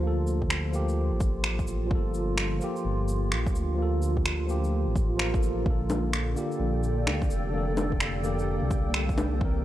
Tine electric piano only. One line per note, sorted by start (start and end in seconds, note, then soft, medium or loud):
0.00 0.72 F3 medium
0.00 0.03 A#3 medium
0.00 0.72 A#3 medium
0.00 0.75 G4 loud
0.00 0.07 A4 medium
0.07 0.74 A4 medium
0.72 0.82 F3 medium
0.72 0.83 A#3 medium
0.72 0.84 G4 loud
1.87 2.57 F3 medium
1.91 2.59 A#3 medium
1.95 2.61 A4 medium
2.60 2.69 F3 medium
2.60 2.71 A#3 medium
2.64 2.71 G4 loud
3.75 4.45 F3 medium
3.75 4.47 A#3 medium
3.82 4.49 A4 medium
4.47 4.57 F3 medium
4.47 4.58 A#3 medium
4.51 4.59 G4 loud
5.17 5.30 F3 medium
5.17 5.30 A#3 medium
5.21 5.32 A#4 loud
5.32 5.41 F3 medium
5.32 5.42 A#3 medium
5.36 5.43 A4 medium
5.62 6.32 D3 medium
5.62 6.34 A#3 medium
5.70 6.36 A4 medium
6.35 6.44 D3 medium
6.35 6.45 A#3 medium
6.35 6.46 G4 loud
7.50 8.20 D3 medium
7.50 8.22 A#3 medium
7.58 8.24 A4 loud
8.22 8.32 D3 medium
8.22 8.33 A#3 medium
8.22 8.34 G4 loud
9.37 9.64 E3 medium
9.41 9.64 C4 medium
9.41 9.64 A#4 loud